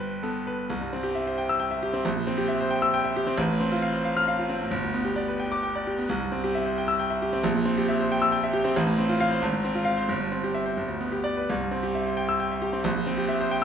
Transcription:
0.00 0.65 G1 medium
0.00 0.65 G2 medium
0.00 0.47 B4 medium
0.00 0.72 C5 medium
0.00 0.73 G5 loud
0.23 0.61 B3 medium
0.23 0.46 A4 medium
0.47 0.70 B4 medium
0.70 2.01 C2 medium
0.81 0.99 G2 medium
0.93 1.11 C4 medium
1.03 1.22 G4 medium
1.15 1.33 E5 medium
1.27 1.45 C5 medium
1.38 1.56 G5 medium
1.49 1.67 E6 loud
1.60 1.78 G5 medium
1.71 1.89 E5 medium
1.83 2.00 G4 medium
1.93 2.05 C4 medium
2.05 3.33 A#1 loud
2.16 2.34 A#2 medium
2.27 2.45 C4 medium
2.38 2.55 G4 medium
2.48 2.66 E5 medium
2.61 2.78 C5 loud
2.71 2.88 G5 loud
2.82 3.00 E6 loud
2.94 3.11 G5 loud
3.04 3.22 E5 loud
3.16 3.34 G4 loud
3.27 3.38 C4 loud
3.38 4.67 A1 loud
3.49 3.66 A2 medium
3.60 3.78 C4 medium
3.72 3.89 F4 medium
3.82 4.00 F5 loud
3.93 4.11 C5 medium
4.05 4.22 F5 medium
4.17 4.34 F6 loud
4.28 4.45 F5 loud
4.39 4.56 F4 medium
4.49 4.67 C4 medium
4.60 4.71 A2 medium
4.71 6.05 G1 loud
4.83 5.01 D2 medium
4.94 5.12 B3 medium
5.05 5.24 G4 medium
5.16 5.35 D5 medium
5.28 5.47 B4 medium
5.40 5.58 G5 medium
5.52 5.70 D6 loud
5.63 5.81 G5 medium
5.75 5.93 D5 medium
5.87 6.05 G4 medium
5.98 6.09 B3 medium
6.09 7.40 C2 loud
6.20 6.39 G2 medium
6.32 6.50 C4 medium
6.44 6.62 G4 medium
6.55 6.73 E5 medium
6.66 6.84 C5 medium
6.78 6.95 G5 medium
6.88 7.06 E6 loud
6.99 7.17 G5 medium
7.10 7.28 E5 medium
7.22 7.40 G4 medium
7.33 7.44 C4 medium
7.44 8.72 A#1 loud
7.54 7.72 A#2 medium
7.65 7.83 C4 medium
7.77 7.95 G4 medium
7.88 8.06 E5 loud
8.00 8.17 C5 medium
8.12 8.28 G5 loud
8.22 8.39 E6 loud
8.32 8.49 G5 loud
8.44 8.61 E5 loud
8.53 8.71 G4 loud
8.64 8.76 C4 loud
8.76 9.41 A1 loud
8.86 9.04 A2 medium
8.98 9.16 C4 medium
9.09 9.27 F4 loud
9.21 9.38 F5 loud
9.31 9.42 C5 loud
9.42 10.09 G#1 loud
9.53 9.71 G#2 medium
9.64 9.83 C4 medium
9.75 9.94 F4 medium
9.85 10.05 F5 loud
9.97 10.10 C5 medium
10.09 10.76 G1 loud
10.20 10.40 G2 medium
10.32 10.52 C4 medium
10.44 10.63 G4 medium
10.55 10.74 E5 loud
10.66 10.79 C5 medium
10.77 11.47 G1 medium
10.88 11.09 D2 medium
11.01 11.21 B3 medium
11.12 11.33 G4 medium
11.24 11.44 D5 loud
11.37 11.50 B4 medium
11.50 12.82 C2 loud
11.61 11.80 G2 medium
11.71 11.91 C4 medium
11.83 12.02 G4 medium
11.95 12.14 E5 medium
12.06 12.25 C5 medium
12.17 12.36 G5 medium
12.29 12.47 E6 loud
12.40 12.59 G5 medium
12.51 12.70 E5 medium
12.62 12.81 G4 medium
12.73 12.85 C4 medium
12.84 13.64 A#1 loud
12.95 13.14 A#2 medium
13.06 13.25 C4 medium
13.17 13.36 G4 medium
13.28 13.47 E5 loud
13.40 13.58 C5 loud
13.51 13.64 G5 loud

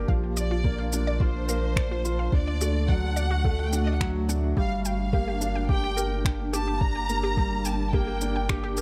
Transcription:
0.00 0.11 G3 medium
0.00 0.11 A#3 loud
0.00 2.29 A#3 medium
0.00 0.11 D4 medium
0.00 2.29 D4 medium
0.00 0.10 G4 loud
0.00 0.10 A#4 medium
0.08 2.30 A#1 medium
0.08 0.35 F3 medium
0.08 2.31 F4 medium
0.08 0.14 F5 medium
0.08 kick loud
0.37 0.50 D5 loud
0.37 0.89 D5 medium
0.37 shaker medium
0.51 0.64 F4 medium
0.64 0.91 A#3 medium
0.64 kick loud
0.79 0.84 F5 medium
0.93 1.09 D4 medium
0.93 1.19 D5 medium
0.93 shaker medium
1.07 1.20 D5 loud
1.20 1.34 F4 medium
1.20 1.47 F4 medium
1.20 2.34 C5 loud
1.20 kick loud
1.48 1.65 A#4 medium
1.48 1.54 F5 medium
1.48 shaker medium
1.76 1.90 D5 loud
1.76 finger snap medium
1.76 kick loud
1.91 2.04 F4 medium
2.05 2.31 F4 medium
2.05 shaker medium
2.19 2.24 F5 medium
2.32 4.54 D2 medium
2.32 4.55 A3 medium
2.32 8.81 D4 medium
2.32 2.60 D4 medium
2.32 4.55 F#4 loud
2.32 2.90 D5 loud
2.32 kick loud
2.48 2.61 D5 medium
2.61 2.88 A3 medium
2.61 2.74 F#4 medium
2.61 shaker medium
2.88 3.16 F#3 medium
2.88 2.94 F#5 medium
2.88 3.65 F#5 loud
2.88 kick loud
3.16 3.30 D5 loud
3.16 shaker medium
3.31 3.44 F#4 medium
3.45 3.72 A3 loud
3.45 kick loud
3.59 3.64 F#5 medium
3.66 3.75 G5 medium
3.73 4.00 D4 medium
3.73 3.83 F#5 medium
3.73 shaker medium
3.85 4.00 D5 medium
3.85 3.93 D#5 medium
3.93 4.02 F#5 medium
4.00 4.27 F#3 loud
4.00 4.15 F#4 medium
4.00 finger snap medium
4.00 kick loud
4.29 4.56 D4 medium
4.29 4.35 F#5 medium
4.29 shaker medium
4.57 8.81 G1 medium
4.57 4.84 G3 medium
4.57 8.81 A#3 medium
4.57 4.71 G4 medium
4.57 8.81 G4 medium
4.57 4.84 F5 loud
4.57 kick loud
4.85 5.66 F5 loud
4.85 4.91 G5 medium
4.85 shaker medium
5.13 5.40 A#3 medium
5.13 5.27 G4 medium
5.13 kick loud
5.28 5.41 G4 medium
5.41 5.57 D4 medium
5.41 shaker medium
5.55 5.61 G5 medium
5.69 5.96 G4 medium
5.69 6.26 G5 loud
5.69 kick loud
5.84 5.96 G4 medium
5.97 6.11 G4 medium
5.97 6.13 A#4 medium
5.97 shaker medium
6.25 6.31 G5 medium
6.25 finger snap medium
6.25 kick loud
6.53 6.80 G4 medium
6.53 6.66 G4 loud
6.53 6.80 A5 loud
6.53 shaker medium
6.68 6.81 G4 medium
6.81 7.08 D4 medium
6.81 7.66 A#5 loud
6.81 kick loud
6.95 7.01 G5 medium
7.09 7.36 A#3 medium
7.09 shaker medium
7.23 7.36 G4 loud
7.37 7.64 G3 medium
7.37 7.51 G4 medium
7.37 kick loud
7.65 7.71 G5 medium
7.65 7.93 A5 loud
7.65 shaker medium
7.92 8.20 A#3 loud
7.92 8.06 G4 loud
7.92 8.77 G5 loud
7.92 kick loud
8.07 8.21 G4 medium
8.21 8.49 D4 medium
8.21 shaker medium
8.36 8.41 G5 medium
8.49 8.76 G4 loud
8.49 finger snap medium
8.49 kick loud
8.64 8.77 G4 loud
8.77 8.81 G4 medium
8.77 8.81 A#4 medium
8.77 shaker medium

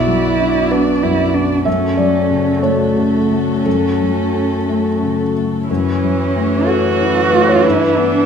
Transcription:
0.00 1.62 B1 medium
0.00 0.72 B3 soft
0.00 1.62 B3 soft
0.00 0.73 E4 medium
0.00 1.65 F#4 soft
0.00 1.62 D5 soft
0.00 0.67 E5 medium
0.07 0.58 F#3 soft
0.40 0.91 D4 soft
0.71 1.22 B3 soft
0.71 1.05 D4 medium
0.71 1.62 B4 medium
1.03 1.54 F#2 soft
1.03 1.35 E4 medium
1.34 1.66 B3 soft
1.34 1.66 D4 medium
1.65 3.62 F#2 medium
1.65 5.69 A3 medium
1.65 2.64 C#4 medium
1.65 5.65 F#4 soft
1.65 5.69 A4 soft
1.65 1.96 E5 medium
1.97 2.50 F#3 soft
1.97 2.59 D5 medium
2.31 2.84 C#3 soft
2.63 3.64 A3 medium
2.63 3.17 A3 soft
2.63 3.61 C#5 medium
2.97 3.51 C#3 soft
3.31 3.86 A3 soft
3.65 5.65 F#2 soft
3.65 5.15 C#4 medium
3.65 5.31 A4 medium
4.02 4.55 F#3 soft
4.34 4.88 C#4 soft
4.69 5.23 A3 soft
5.03 5.57 C#3 soft
5.37 5.70 A3 soft
5.68 7.61 F#2 soft
5.68 8.26 E3 medium
5.68 6.69 C#4 medium
5.68 7.61 C#4 soft
5.68 8.26 E4 soft
5.68 7.61 C#5 soft
6.04 6.55 F#3 soft
6.36 6.88 A3 soft
6.66 7.66 F#4 medium
6.66 7.19 F#4 soft
6.66 7.27 A4 medium
7.01 7.51 E4 soft
7.30 7.64 A3 soft
7.30 7.46 B4 medium
7.49 7.63 C#5 medium
7.63 8.26 G2 medium
7.63 8.26 D4 soft
7.63 7.99 E4 medium
7.63 8.26 B4 medium
7.63 8.26 E5 soft
7.97 8.26 B3 soft
7.97 8.26 D4 medium

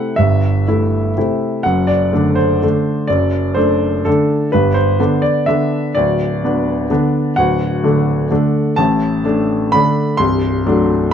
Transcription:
0.00 0.14 C3 soft
0.00 0.14 A3 soft
0.00 0.14 E4 soft
0.00 0.17 F#5 medium
0.16 0.66 G1 soft
0.16 0.65 G2 soft
0.16 1.64 E5 medium
0.68 1.13 A3 soft
0.68 1.13 E4 soft
1.17 1.62 C3 soft
1.17 1.62 A3 soft
1.17 1.62 E4 soft
1.63 2.12 F#1 soft
1.63 2.12 F#2 soft
1.63 1.88 F#5 medium
1.87 2.38 D5 medium
2.13 2.59 D3 soft
2.13 2.59 A3 soft
2.13 2.59 D4 soft
2.35 3.09 C5 soft
2.63 3.06 D3 soft
2.63 3.06 A3 soft
2.63 3.07 D4 soft
3.07 3.55 F#1 soft
3.07 3.55 F#2 soft
3.07 3.56 D5 medium
3.54 4.03 A3 soft
3.54 4.03 D4 soft
3.54 4.06 C5 medium
4.05 4.49 D3 soft
4.05 4.49 A3 soft
4.05 4.49 D4 soft
4.05 4.52 A4 medium
4.52 4.98 G1 soft
4.52 4.98 G2 soft
4.52 4.75 B4 medium
4.74 5.23 C5 medium
4.99 5.44 D3 soft
4.99 5.44 B3 soft
4.99 5.45 D4 soft
5.22 5.47 D5 medium
5.46 5.92 D3 soft
5.46 5.92 B3 soft
5.46 5.92 D4 soft
5.46 5.95 E5 medium
5.95 6.41 D1 soft
5.95 6.41 D2 soft
5.95 7.36 D5 medium
6.44 6.87 B3 soft
6.44 6.87 D4 soft
6.90 7.33 D3 soft
6.90 7.33 B3 soft
6.90 7.33 D4 soft
7.36 7.82 D1 soft
7.36 7.82 D2 soft
7.36 8.77 F#5 medium
7.84 8.27 D3 soft
7.84 8.27 A3 soft
7.84 8.27 D4 soft
8.31 8.74 D3 soft
8.31 8.74 A3 soft
8.31 8.74 D4 soft
8.76 9.23 A1 soft
8.76 9.23 A2 soft
8.76 9.72 A5 medium
9.24 9.68 A3 soft
9.24 9.69 D4 soft
9.72 10.15 D3 soft
9.72 10.15 A3 soft
9.72 10.15 D4 soft
9.72 10.18 B5 medium
10.17 10.63 C1 soft
10.17 10.63 C2 soft
10.17 11.11 C6 medium
10.66 11.09 F#3 soft
10.66 11.09 A3 soft
10.66 11.09 D4 soft

